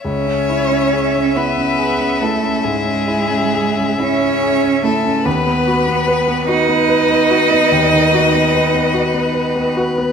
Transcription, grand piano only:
X:1
M:12/8
L:1/16
Q:3/8=48
K:C#m
V:1 name="Grand piano"
C,, C E C G C E C G C E C G,, C E C G C E C G C E C | D,, B, F B, B B, F B, B B, F B, D,, D, F B, B B, F B, B B, F B, |]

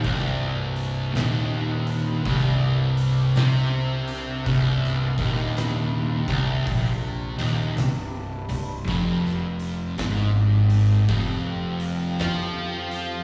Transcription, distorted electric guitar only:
X:1
M:4/4
L:1/8
Q:"Swing" 1/4=54
K:Cm
V:1 name="Distorted electric guitar" clef=bass
C,,2 E,,2 C,,2 C,2 | C,, E,,2 C,, B,, E,, C,, C,, | F,,2 A,,2 F,,2 F,2 |]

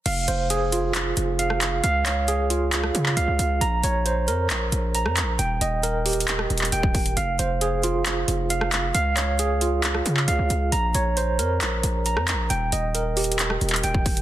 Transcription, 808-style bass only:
X:1
M:4/4
L:1/16
Q:1/4=135
K:Fm
V:1 name="808-style bass" clef=bass
F,,,2 F,,,8 F,,,6 | D,,8- D,,2 D,2 D,, D,, D,,2 | B,,,2 B,,,4 F,,2 B,,,2 B,,,3 F,,3/2 B,,,3/2 | E,,,2 E,,,8 E,,,2 E,,,4 |
F,,,2 F,,,8 F,,,6 | D,,8- D,,2 D,2 D,, D,, D,,2 | B,,,2 B,,,4 F,,2 B,,,2 B,,,3 F,,3/2 B,,,3/2 | E,,,2 E,,,8 E,,,2 E,,,4 |]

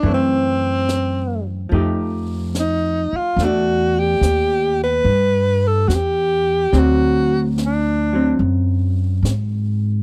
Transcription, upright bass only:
X:1
M:4/4
L:1/8
Q:"Swing" 1/4=72
K:Edor
V:1 name="Upright bass" clef=bass
F,,4 =F,,3 z | E,,2 _E,,2 G,,2 =E,,2 | D,,4 F,,2 ^G,,2 |]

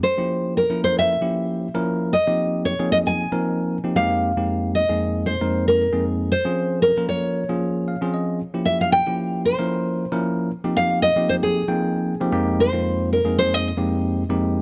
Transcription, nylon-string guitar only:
X:1
M:4/4
L:1/16
Q:"Swing 16ths" 1/4=115
K:Fm
V:1 name="Nylon-string guitar"
c4 B2 c =e6- e z2 | e4 d2 e a6- a f2- | f4 e4 c3 B3 z2 | c4 B2 d8 z2 |
z2 =e f g4 c6 z2 | z2 f2 e2 c A6- A z2 | c4 B2 c e6- e z2 |]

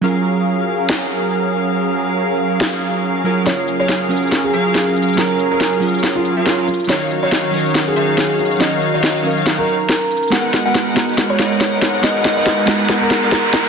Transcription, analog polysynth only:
X:1
M:4/4
L:1/16
Q:"Swing 16ths" 1/4=140
K:F#
V:1 name="Analog polysynth"
[F,CGAe]16- | [F,CGAe]12- [F,CGAe]2 [F,CGAe]2 | [F,CGAe]3 [F,CGAe]6- [F,CGAe] [F,CGAe]6 | [F,CGAe]3 [F,CGAe]8 [F,CGAe]3 z2 |
[D,DFce]3 [D,DFce]6- [D,DFce] [D,DFce]6 | [D,DFce]3 [D,DFce]8 z4 z | [G,DABf]3 [G,DABf]6- [G,DABf] [G,DABf]6 | [G,DABf]3 [G,DABf]8 [G,DABf]4- [G,DABf] |]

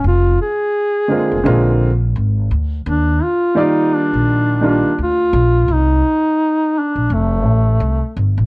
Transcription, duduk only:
X:1
M:4/4
L:1/8
Q:"Swing 16ths" 1/4=85
K:Eblyd
V:1 name="Duduk"
F _A4 z3 | D F E D2 D F2 | E3 D A,3 z |]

